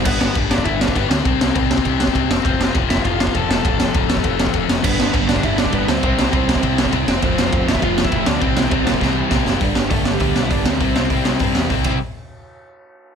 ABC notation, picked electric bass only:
X:1
M:4/4
L:1/8
Q:1/4=201
K:C
V:1 name="Picked electric bass" clef=bass
G,,, G,,, G,,, G,,, G,,,2 G,,, D,, | C,, C,, C,, C,, C,,2 C,, F,,, | F,,, F,,, F,,, F,,, F,,,2 F,,, F,,, | F,,, F,,, F,,, F,,, F,,,2 F,,, F,,, |
G,,, G,,, G,,, G,,, G,,,2 G,,, D,, | C,, C,, C,, C,, C,,2 C,, F,,, | F,,, F,,, F,,, F,,, F,,,2 F,,, D,, | C,, C,, C,, C,, C,,2 C,, ^F,,, |
G,,, G,,, G,,,2 D,, B,,, G,,, D,, | C,, C,, C,,2 G,, E,, C,, C,, | z8 |]